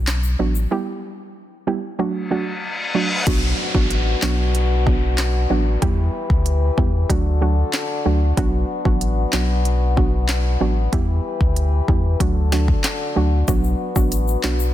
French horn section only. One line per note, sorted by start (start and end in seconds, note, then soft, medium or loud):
3.27 5.80 B3 medium
5.82 7.08 E3 medium
5.82 7.08 E4 medium
5.82 7.08 G4 medium
5.82 7.08 B4 medium
7.10 8.36 D3 medium
7.10 10.89 D4 medium
7.10 10.89 F#4 medium
7.10 8.36 A4 medium
8.37 10.90 B3 medium
10.93 12.19 E3 medium
10.93 12.19 E4 medium
10.93 12.19 G4 medium
10.93 12.19 B4 medium
12.20 13.47 D3 medium
12.20 14.74 D4 medium
12.20 14.74 F#4 medium
12.20 13.47 A4 medium
13.48 14.74 B3 medium